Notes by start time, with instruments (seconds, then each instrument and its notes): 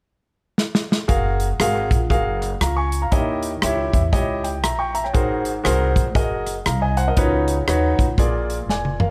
0.58 snare
0.75 snare
0.92 snare
1.08 upright bass F#1, grand piano F#4 G#4 A#4 F5, kick, closed hi-hat
1.40 closed hi-hat
1.60 upright bass G#1, grand piano F#4 G#4 A#4 F5, cross-stick, closed hi-hat
1.91 upright bass A#1, kick, closed hi-hat
2.10 upright bass F#1, grand piano F#4 G#4 A#4 F5, kick, closed hi-hat
2.42 cross-stick, closed hi-hat
2.61 upright bass C#2, grand piano F5 A#5, cross-stick, closed hi-hat
2.77 grand piano G#5 C#6
2.92 closed hi-hat
3.02 grand piano F5 A#5
3.11 upright bass D#2, grand piano D#3 E4 G4 C#5 D#5, kick, closed hi-hat
3.43 closed hi-hat
3.62 upright bass C#2, grand piano E4 G4 C#5 E5, cross-stick, closed hi-hat
3.93 upright bass E2, grand piano E5, kick, closed hi-hat
4.12 upright bass C#2, grand piano E4 G4 C#5 D#5, kick, closed hi-hat
4.44 grand piano G5, cross-stick, closed hi-hat
4.63 upright bass A#1, grand piano E5 A#5, cross-stick, closed hi-hat
4.79 grand piano G5 C#6
4.95 grand piano E5 A#5, closed hi-hat
5.04 grand piano C#5 G5, cross-stick
5.13 upright bass G#1, grand piano G#2 F#4 G#4 A#4 C5, kick, closed hi-hat
5.45 closed hi-hat
5.64 upright bass C2, grand piano F#4 G#4 A#4 C5, cross-stick, closed hi-hat
5.96 upright bass A#1, kick, closed hi-hat
6.15 upright bass F#1, grand piano F#4 G#4 A#4 D#5, kick, closed hi-hat
6.46 cross-stick, closed hi-hat
6.66 upright bass C2, grand piano F5 A#5, cross-stick, closed hi-hat
6.82 grand piano D#5 G#5
6.97 grand piano C5 F#5, closed hi-hat
7.08 grand piano A#4 D#5
7.17 upright bass C#2, grand piano C#3 D#4 F#4 B4 C#5, kick, closed hi-hat
7.48 closed hi-hat
7.68 upright bass D#2, grand piano D#4 F#4 B4 C#5, cross-stick, closed hi-hat
7.99 upright bass C#2, kick, closed hi-hat
8.18 upright bass A#1, grand piano A#2 F4 G#4 A#4 D5, kick, closed hi-hat
8.50 closed hi-hat
8.69 upright bass F1, grand piano D5 G#5, snare
8.85 high tom
9.00 grand piano A#4 F5, mid tom